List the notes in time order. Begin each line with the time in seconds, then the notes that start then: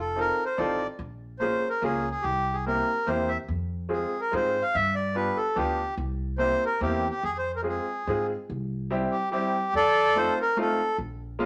Already playing: F1
0.00 A4
0.16 C4 D#4 F4 A4 A#4
0.45 C5
0.58 A1 C4 D#4 F4 A4 D5
0.99 A#1
1.39 A#3 C#4 F4 G#4 C5
1.69 A#4
1.82 C#2 A#3 C#4 F4 G#4
2.11 G#4
2.22 C2 G4
2.53 G#4
2.66 A#3 C4 E4 G4 A#4
3.07 E2 A#3 C4 E4 G4 C5
3.28 E5
3.48 F2
3.89 G#3 C4 F4 G#4
4.20 A#4
4.32 G#2 G#3 C4 F4 G#4 C5
4.62 F5
4.75 G2 E5
4.95 D5
5.15 B3 D4 F4 G4 B4
5.37 A4
5.55 D2 B3 D4 F4 G4
5.97 C2
6.38 A#3 C4 E4 G4 C5
6.65 A#4
6.81 E2 A#3 C4 E4 G4
7.10 G4
7.23 F2 G#4
7.38 C5
7.56 A#4
7.63 G#3 C4 F4 G#4
7.69 G#4
8.07 G#2 G#3 C4 F4 G#4
8.50 C2
8.91 G3 C4 E4 G4
9.11 G4
9.31 G3 C4 E4 G4
9.74 F2 A4 D5
10.15 A3 C4 D#4 F4 C5
10.41 A#4
10.57 A3 C4 D#4 F4
10.61 A4
10.98 A#1
11.39 G#3 A#3 C#4 F4